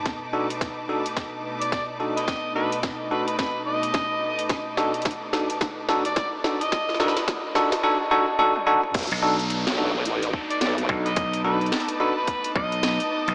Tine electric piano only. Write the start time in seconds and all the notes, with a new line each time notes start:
0.33 D4 D#4 F#4 A4
0.89 D4 D#4 F#4 A4
2.00 D4 D#4 F#4 A4
2.56 D4 D#4 F#4 A4
3.11 D4 D#4 F#4 A4
4.78 D4 D#4 F#4 A4
5.33 D4 D#4 F#4 A4
5.89 D4 D#4 F#4 A4
6.44 D4 D#4 F#4 A4
7.00 D4 D#4 F#4 A4
7.55 D4 D#4 F#4 A4
7.83 D4 D#4 F#4 A4
8.11 D4 D#4 F#4 A4
8.39 D4 D#4 F#4 A4
8.67 D4 D#4 F#4 A4
9.22 D4 D#4 F#4 A4
9.78 D4 D#4 F#4 A4
10.89 D4 D#4 F#4 A4
11.44 D4 D#4 F#4 A4
12.00 D4 D#4 F#4 A4